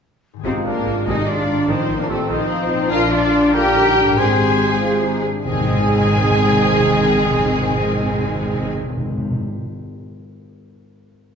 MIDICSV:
0, 0, Header, 1, 12, 480
1, 0, Start_track
1, 0, Tempo, 410959
1, 530, Time_signature, 6, 3, 24, 8
1, 3402, Tempo, 423131
1, 6282, Tempo, 411523
1, 13162, End_track
2, 0, Start_track
2, 0, Title_t, "Violin section"
2, 0, Program_c, 0, 48
2, 525, Note_on_c, 0, 72, 59
2, 619, Note_off_c, 0, 72, 0
2, 775, Note_on_c, 0, 70, 54
2, 1248, Note_off_c, 0, 70, 0
2, 1249, Note_on_c, 0, 75, 53
2, 1488, Note_off_c, 0, 75, 0
2, 1492, Note_on_c, 0, 74, 62
2, 1971, Note_on_c, 0, 72, 64
2, 1974, Note_off_c, 0, 74, 0
2, 2324, Note_off_c, 0, 72, 0
2, 2331, Note_on_c, 0, 70, 55
2, 2442, Note_on_c, 0, 69, 62
2, 2451, Note_off_c, 0, 70, 0
2, 2683, Note_on_c, 0, 72, 67
2, 2684, Note_off_c, 0, 69, 0
2, 3385, Note_off_c, 0, 72, 0
2, 3395, Note_on_c, 0, 77, 96
2, 3486, Note_off_c, 0, 77, 0
2, 3644, Note_on_c, 0, 74, 83
2, 4113, Note_off_c, 0, 74, 0
2, 4121, Note_on_c, 0, 79, 99
2, 4824, Note_off_c, 0, 79, 0
2, 4824, Note_on_c, 0, 80, 79
2, 6036, Note_off_c, 0, 80, 0
2, 6279, Note_on_c, 0, 80, 85
2, 10055, Note_off_c, 0, 80, 0
2, 13162, End_track
3, 0, Start_track
3, 0, Title_t, "Clarinet"
3, 0, Program_c, 1, 71
3, 516, Note_on_c, 1, 72, 49
3, 752, Note_on_c, 1, 70, 43
3, 770, Note_off_c, 1, 72, 0
3, 1236, Note_off_c, 1, 70, 0
3, 1243, Note_on_c, 1, 75, 52
3, 1488, Note_on_c, 1, 74, 57
3, 1506, Note_off_c, 1, 75, 0
3, 1955, Note_on_c, 1, 72, 60
3, 1973, Note_off_c, 1, 74, 0
3, 2324, Note_off_c, 1, 72, 0
3, 2332, Note_on_c, 1, 70, 43
3, 2437, Note_off_c, 1, 70, 0
3, 2445, Note_on_c, 1, 69, 52
3, 2664, Note_off_c, 1, 69, 0
3, 2671, Note_on_c, 1, 72, 68
3, 3390, Note_on_c, 1, 77, 83
3, 3407, Note_off_c, 1, 72, 0
3, 3619, Note_on_c, 1, 74, 68
3, 3636, Note_off_c, 1, 77, 0
3, 4101, Note_off_c, 1, 74, 0
3, 4108, Note_on_c, 1, 79, 97
3, 4836, Note_on_c, 1, 80, 73
3, 4853, Note_off_c, 1, 79, 0
3, 6042, Note_off_c, 1, 80, 0
3, 6281, Note_on_c, 1, 68, 79
3, 10056, Note_off_c, 1, 68, 0
3, 13162, End_track
4, 0, Start_track
4, 0, Title_t, "Flute"
4, 0, Program_c, 2, 73
4, 508, Note_on_c, 2, 63, 51
4, 745, Note_off_c, 2, 63, 0
4, 760, Note_on_c, 2, 62, 45
4, 1240, Note_off_c, 2, 62, 0
4, 1249, Note_on_c, 2, 68, 54
4, 1473, Note_off_c, 2, 68, 0
4, 1480, Note_on_c, 2, 65, 51
4, 1958, Note_off_c, 2, 65, 0
4, 1970, Note_on_c, 2, 63, 46
4, 2337, Note_on_c, 2, 62, 43
4, 2354, Note_off_c, 2, 63, 0
4, 2431, Note_off_c, 2, 62, 0
4, 2438, Note_on_c, 2, 60, 48
4, 2670, Note_off_c, 2, 60, 0
4, 2677, Note_on_c, 2, 63, 54
4, 3382, Note_off_c, 2, 63, 0
4, 3391, Note_on_c, 2, 70, 71
4, 3616, Note_off_c, 2, 70, 0
4, 3623, Note_on_c, 2, 65, 77
4, 4094, Note_on_c, 2, 70, 93
4, 4111, Note_off_c, 2, 65, 0
4, 4816, Note_off_c, 2, 70, 0
4, 4823, Note_on_c, 2, 72, 72
4, 6011, Note_off_c, 2, 72, 0
4, 6287, Note_on_c, 2, 80, 65
4, 10059, Note_off_c, 2, 80, 0
4, 13162, End_track
5, 0, Start_track
5, 0, Title_t, "Trumpet"
5, 0, Program_c, 3, 56
5, 521, Note_on_c, 3, 63, 48
5, 771, Note_on_c, 3, 62, 47
5, 788, Note_off_c, 3, 63, 0
5, 1244, Note_off_c, 3, 62, 0
5, 1251, Note_on_c, 3, 68, 52
5, 1360, Note_off_c, 3, 68, 0
5, 1489, Note_on_c, 3, 65, 45
5, 1957, Note_off_c, 3, 65, 0
5, 1964, Note_on_c, 3, 63, 48
5, 2325, Note_on_c, 3, 62, 48
5, 2343, Note_off_c, 3, 63, 0
5, 2444, Note_on_c, 3, 60, 58
5, 2461, Note_off_c, 3, 62, 0
5, 2676, Note_off_c, 3, 60, 0
5, 2683, Note_on_c, 3, 63, 64
5, 3385, Note_off_c, 3, 63, 0
5, 3400, Note_on_c, 3, 70, 63
5, 3507, Note_off_c, 3, 70, 0
5, 3637, Note_on_c, 3, 65, 72
5, 4103, Note_off_c, 3, 65, 0
5, 4110, Note_on_c, 3, 70, 83
5, 4830, Note_on_c, 3, 72, 60
5, 4847, Note_off_c, 3, 70, 0
5, 6039, Note_off_c, 3, 72, 0
5, 6280, Note_on_c, 3, 68, 67
5, 10056, Note_off_c, 3, 68, 0
5, 13162, End_track
6, 0, Start_track
6, 0, Title_t, "French horn section"
6, 0, Program_c, 4, 60
6, 524, Note_on_c, 4, 65, 57
6, 1207, Note_off_c, 4, 65, 0
6, 1251, Note_on_c, 4, 51, 39
6, 2681, Note_on_c, 4, 63, 62
6, 2687, Note_off_c, 4, 51, 0
6, 2911, Note_on_c, 4, 65, 58
6, 2917, Note_off_c, 4, 63, 0
6, 3151, Note_off_c, 4, 65, 0
6, 3155, Note_on_c, 4, 63, 58
6, 3394, Note_off_c, 4, 63, 0
6, 3401, Note_on_c, 4, 62, 70
6, 4114, Note_on_c, 4, 65, 71
6, 4119, Note_off_c, 4, 62, 0
6, 4356, Note_off_c, 4, 65, 0
6, 4362, Note_on_c, 4, 63, 65
6, 4591, Note_on_c, 4, 62, 57
6, 4599, Note_off_c, 4, 63, 0
6, 4829, Note_off_c, 4, 62, 0
6, 4844, Note_on_c, 4, 60, 54
6, 5517, Note_off_c, 4, 60, 0
6, 5551, Note_on_c, 4, 65, 69
6, 5780, Note_off_c, 4, 65, 0
6, 5799, Note_on_c, 4, 63, 56
6, 6040, Note_on_c, 4, 62, 51
6, 6042, Note_off_c, 4, 63, 0
6, 6280, Note_off_c, 4, 62, 0
6, 6282, Note_on_c, 4, 51, 69
6, 6282, Note_on_c, 4, 60, 64
6, 10057, Note_off_c, 4, 51, 0
6, 10057, Note_off_c, 4, 60, 0
6, 13162, End_track
7, 0, Start_track
7, 0, Title_t, "Violin section"
7, 0, Program_c, 5, 48
7, 532, Note_on_c, 5, 60, 47
7, 626, Note_off_c, 5, 60, 0
7, 775, Note_on_c, 5, 58, 45
7, 1248, Note_off_c, 5, 58, 0
7, 1260, Note_on_c, 5, 63, 47
7, 1473, Note_on_c, 5, 62, 41
7, 1494, Note_off_c, 5, 63, 0
7, 1962, Note_on_c, 5, 60, 55
7, 1964, Note_off_c, 5, 62, 0
7, 2320, Note_off_c, 5, 60, 0
7, 2331, Note_on_c, 5, 58, 47
7, 2448, Note_on_c, 5, 57, 50
7, 2449, Note_off_c, 5, 58, 0
7, 2682, Note_off_c, 5, 57, 0
7, 2689, Note_on_c, 5, 60, 65
7, 3388, Note_off_c, 5, 60, 0
7, 3403, Note_on_c, 5, 65, 83
7, 3639, Note_off_c, 5, 65, 0
7, 3650, Note_on_c, 5, 62, 70
7, 4116, Note_off_c, 5, 62, 0
7, 4118, Note_on_c, 5, 67, 85
7, 4822, Note_off_c, 5, 67, 0
7, 4846, Note_on_c, 5, 68, 68
7, 6023, Note_off_c, 5, 68, 0
7, 6293, Note_on_c, 5, 68, 85
7, 10062, Note_off_c, 5, 68, 0
7, 13162, End_track
8, 0, Start_track
8, 0, Title_t, "Cello section"
8, 0, Program_c, 6, 48
8, 522, Note_on_c, 6, 60, 49
8, 615, Note_off_c, 6, 60, 0
8, 764, Note_on_c, 6, 58, 38
8, 1242, Note_off_c, 6, 58, 0
8, 1245, Note_on_c, 6, 63, 49
8, 1482, Note_on_c, 6, 62, 48
8, 1486, Note_off_c, 6, 63, 0
8, 1968, Note_on_c, 6, 60, 54
8, 1969, Note_off_c, 6, 62, 0
8, 2328, Note_on_c, 6, 58, 50
8, 2330, Note_off_c, 6, 60, 0
8, 2442, Note_on_c, 6, 57, 49
8, 2450, Note_off_c, 6, 58, 0
8, 2535, Note_off_c, 6, 57, 0
8, 2678, Note_on_c, 6, 60, 60
8, 3383, Note_off_c, 6, 60, 0
8, 3397, Note_on_c, 6, 65, 87
8, 3631, Note_off_c, 6, 65, 0
8, 3632, Note_on_c, 6, 62, 69
8, 4115, Note_on_c, 6, 67, 81
8, 4116, Note_off_c, 6, 62, 0
8, 4820, Note_off_c, 6, 67, 0
8, 4836, Note_on_c, 6, 68, 61
8, 6018, Note_off_c, 6, 68, 0
8, 6276, Note_on_c, 6, 56, 78
8, 10054, Note_off_c, 6, 56, 0
8, 13162, End_track
9, 0, Start_track
9, 0, Title_t, "Harp"
9, 0, Program_c, 7, 46
9, 391, Note_on_c, 7, 44, 28
9, 426, Note_on_c, 7, 51, 26
9, 459, Note_on_c, 7, 60, 28
9, 478, Note_on_c, 7, 68, 25
9, 1768, Note_on_c, 7, 45, 39
9, 1804, Note_off_c, 7, 60, 0
9, 1818, Note_on_c, 7, 60, 31
9, 1868, Note_on_c, 7, 63, 30
9, 1921, Note_on_c, 7, 65, 32
9, 1969, Note_off_c, 7, 68, 0
9, 1994, Note_off_c, 7, 44, 0
9, 3196, Note_on_c, 7, 46, 47
9, 3248, Note_on_c, 7, 58, 42
9, 3300, Note_on_c, 7, 62, 41
9, 3318, Note_off_c, 7, 45, 0
9, 3338, Note_off_c, 7, 65, 0
9, 3343, Note_off_c, 7, 60, 0
9, 3352, Note_on_c, 7, 65, 45
9, 3368, Note_off_c, 7, 63, 0
9, 3370, Note_off_c, 7, 51, 0
9, 4640, Note_on_c, 7, 44, 47
9, 4741, Note_on_c, 7, 63, 37
9, 4756, Note_off_c, 7, 46, 0
9, 4781, Note_off_c, 7, 58, 0
9, 4794, Note_on_c, 7, 68, 38
9, 4807, Note_off_c, 7, 62, 0
9, 4832, Note_off_c, 7, 65, 0
9, 6201, Note_off_c, 7, 44, 0
9, 6288, Note_on_c, 7, 44, 50
9, 6370, Note_on_c, 7, 56, 51
9, 6450, Note_on_c, 7, 60, 50
9, 6518, Note_off_c, 7, 63, 0
9, 6532, Note_on_c, 7, 63, 53
9, 6598, Note_off_c, 7, 68, 0
9, 6612, Note_on_c, 7, 68, 50
9, 6697, Note_on_c, 7, 75, 53
9, 10876, Note_off_c, 7, 44, 0
9, 10917, Note_off_c, 7, 56, 0
9, 10957, Note_off_c, 7, 60, 0
9, 10998, Note_off_c, 7, 63, 0
9, 11038, Note_off_c, 7, 68, 0
9, 11081, Note_off_c, 7, 75, 0
9, 13162, End_track
10, 0, Start_track
10, 0, Title_t, "Viola section"
10, 0, Program_c, 8, 48
10, 524, Note_on_c, 8, 56, 33
10, 526, Note_on_c, 8, 48, 44
10, 755, Note_off_c, 8, 48, 0
10, 771, Note_on_c, 8, 48, 36
10, 865, Note_off_c, 8, 48, 0
10, 1005, Note_on_c, 8, 48, 36
10, 1098, Note_off_c, 8, 48, 0
10, 1251, Note_on_c, 8, 48, 46
10, 1477, Note_off_c, 8, 48, 0
10, 1926, Note_off_c, 8, 56, 0
10, 1965, Note_on_c, 8, 51, 51
10, 1966, Note_on_c, 8, 53, 40
10, 2189, Note_off_c, 8, 51, 0
10, 2203, Note_on_c, 8, 51, 34
10, 2297, Note_off_c, 8, 51, 0
10, 2446, Note_on_c, 8, 48, 37
10, 2539, Note_off_c, 8, 48, 0
10, 2669, Note_on_c, 8, 51, 54
10, 2899, Note_off_c, 8, 51, 0
10, 3369, Note_off_c, 8, 53, 0
10, 3392, Note_on_c, 8, 50, 52
10, 3397, Note_on_c, 8, 53, 52
10, 4311, Note_off_c, 8, 53, 0
10, 4351, Note_on_c, 8, 55, 56
10, 4787, Note_off_c, 8, 50, 0
10, 4828, Note_on_c, 8, 48, 55
10, 4828, Note_on_c, 8, 56, 53
10, 4833, Note_off_c, 8, 55, 0
10, 6021, Note_off_c, 8, 48, 0
10, 6021, Note_off_c, 8, 56, 0
10, 6274, Note_on_c, 8, 51, 61
10, 6277, Note_on_c, 8, 60, 58
10, 10053, Note_off_c, 8, 51, 0
10, 10054, Note_off_c, 8, 60, 0
10, 13162, End_track
11, 0, Start_track
11, 0, Title_t, "Timpani"
11, 0, Program_c, 10, 47
11, 521, Note_on_c, 10, 44, 50
11, 1205, Note_off_c, 10, 44, 0
11, 4837, Note_on_c, 10, 44, 66
11, 5516, Note_off_c, 10, 44, 0
11, 6282, Note_on_c, 10, 44, 72
11, 6366, Note_off_c, 10, 44, 0
11, 6369, Note_on_c, 10, 44, 71
11, 6441, Note_off_c, 10, 44, 0
11, 6441, Note_on_c, 10, 44, 80
11, 6523, Note_off_c, 10, 44, 0
11, 6523, Note_on_c, 10, 44, 67
11, 6607, Note_off_c, 10, 44, 0
11, 6608, Note_on_c, 10, 44, 68
11, 6686, Note_off_c, 10, 44, 0
11, 6686, Note_on_c, 10, 44, 68
11, 6770, Note_off_c, 10, 44, 0
11, 6770, Note_on_c, 10, 44, 73
11, 6849, Note_off_c, 10, 44, 0
11, 6849, Note_on_c, 10, 44, 68
11, 6933, Note_off_c, 10, 44, 0
11, 6933, Note_on_c, 10, 44, 72
11, 7012, Note_off_c, 10, 44, 0
11, 7012, Note_on_c, 10, 44, 68
11, 7095, Note_off_c, 10, 44, 0
11, 7099, Note_on_c, 10, 44, 72
11, 7183, Note_off_c, 10, 44, 0
11, 7185, Note_on_c, 10, 44, 60
11, 7269, Note_off_c, 10, 44, 0
11, 7269, Note_on_c, 10, 44, 77
11, 7348, Note_off_c, 10, 44, 0
11, 7348, Note_on_c, 10, 44, 67
11, 7430, Note_off_c, 10, 44, 0
11, 7430, Note_on_c, 10, 44, 72
11, 7513, Note_off_c, 10, 44, 0
11, 7513, Note_on_c, 10, 44, 69
11, 7597, Note_off_c, 10, 44, 0
11, 7604, Note_on_c, 10, 44, 71
11, 7687, Note_off_c, 10, 44, 0
11, 7693, Note_on_c, 10, 44, 61
11, 7766, Note_off_c, 10, 44, 0
11, 7766, Note_on_c, 10, 44, 76
11, 7850, Note_off_c, 10, 44, 0
11, 7851, Note_on_c, 10, 44, 70
11, 7935, Note_off_c, 10, 44, 0
11, 7942, Note_on_c, 10, 44, 70
11, 8023, Note_off_c, 10, 44, 0
11, 8023, Note_on_c, 10, 44, 72
11, 8107, Note_off_c, 10, 44, 0
11, 8110, Note_on_c, 10, 44, 68
11, 8192, Note_off_c, 10, 44, 0
11, 8192, Note_on_c, 10, 44, 65
11, 8276, Note_off_c, 10, 44, 0
11, 8281, Note_on_c, 10, 44, 75
11, 8364, Note_off_c, 10, 44, 0
11, 8364, Note_on_c, 10, 44, 69
11, 8446, Note_off_c, 10, 44, 0
11, 8446, Note_on_c, 10, 44, 79
11, 8529, Note_off_c, 10, 44, 0
11, 8534, Note_on_c, 10, 44, 73
11, 8617, Note_off_c, 10, 44, 0
11, 8618, Note_on_c, 10, 44, 72
11, 8702, Note_off_c, 10, 44, 0
11, 8706, Note_on_c, 10, 44, 61
11, 8790, Note_off_c, 10, 44, 0
11, 8790, Note_on_c, 10, 44, 68
11, 8873, Note_off_c, 10, 44, 0
11, 8884, Note_on_c, 10, 44, 68
11, 8965, Note_off_c, 10, 44, 0
11, 8965, Note_on_c, 10, 44, 79
11, 9046, Note_off_c, 10, 44, 0
11, 9046, Note_on_c, 10, 44, 68
11, 9127, Note_off_c, 10, 44, 0
11, 9127, Note_on_c, 10, 44, 73
11, 9211, Note_off_c, 10, 44, 0
11, 9214, Note_on_c, 10, 44, 69
11, 9298, Note_off_c, 10, 44, 0
11, 9301, Note_on_c, 10, 44, 69
11, 9385, Note_off_c, 10, 44, 0
11, 9391, Note_on_c, 10, 44, 66
11, 9475, Note_off_c, 10, 44, 0
11, 9476, Note_on_c, 10, 44, 76
11, 9554, Note_off_c, 10, 44, 0
11, 9554, Note_on_c, 10, 44, 66
11, 9638, Note_off_c, 10, 44, 0
11, 9638, Note_on_c, 10, 44, 69
11, 9716, Note_off_c, 10, 44, 0
11, 9716, Note_on_c, 10, 44, 72
11, 9796, Note_off_c, 10, 44, 0
11, 9796, Note_on_c, 10, 44, 68
11, 9880, Note_off_c, 10, 44, 0
11, 9881, Note_on_c, 10, 44, 65
11, 9964, Note_off_c, 10, 44, 0
11, 9964, Note_on_c, 10, 44, 73
11, 10043, Note_off_c, 10, 44, 0
11, 10043, Note_on_c, 10, 44, 61
11, 10127, Note_off_c, 10, 44, 0
11, 10127, Note_on_c, 10, 44, 72
11, 10211, Note_off_c, 10, 44, 0
11, 10212, Note_on_c, 10, 44, 73
11, 10296, Note_off_c, 10, 44, 0
11, 10305, Note_on_c, 10, 44, 77
11, 10389, Note_off_c, 10, 44, 0
11, 10389, Note_on_c, 10, 44, 74
11, 10466, Note_off_c, 10, 44, 0
11, 10466, Note_on_c, 10, 44, 75
11, 10545, Note_off_c, 10, 44, 0
11, 10545, Note_on_c, 10, 44, 70
11, 10628, Note_off_c, 10, 44, 0
11, 10628, Note_on_c, 10, 44, 78
11, 10708, Note_off_c, 10, 44, 0
11, 10708, Note_on_c, 10, 44, 74
11, 10785, Note_off_c, 10, 44, 0
11, 10785, Note_on_c, 10, 44, 76
11, 10869, Note_off_c, 10, 44, 0
11, 13162, End_track
12, 0, Start_track
12, 0, Title_t, "Double bass section"
12, 0, Program_c, 11, 48
12, 520, Note_on_c, 11, 32, 46
12, 614, Note_off_c, 11, 32, 0
12, 767, Note_on_c, 11, 32, 30
12, 861, Note_off_c, 11, 32, 0
12, 1004, Note_on_c, 11, 32, 32
12, 1097, Note_off_c, 11, 32, 0
12, 1251, Note_on_c, 11, 32, 52
12, 1344, Note_off_c, 11, 32, 0
12, 1964, Note_on_c, 11, 33, 47
12, 2058, Note_off_c, 11, 33, 0
12, 2203, Note_on_c, 11, 33, 38
12, 2296, Note_off_c, 11, 33, 0
12, 2450, Note_on_c, 11, 33, 37
12, 2543, Note_off_c, 11, 33, 0
12, 2687, Note_on_c, 11, 33, 55
12, 2781, Note_off_c, 11, 33, 0
12, 3399, Note_on_c, 11, 34, 63
12, 4790, Note_off_c, 11, 34, 0
12, 4835, Note_on_c, 11, 32, 59
12, 6049, Note_off_c, 11, 32, 0
12, 6272, Note_on_c, 11, 32, 64
12, 10052, Note_off_c, 11, 32, 0
12, 13162, End_track
0, 0, End_of_file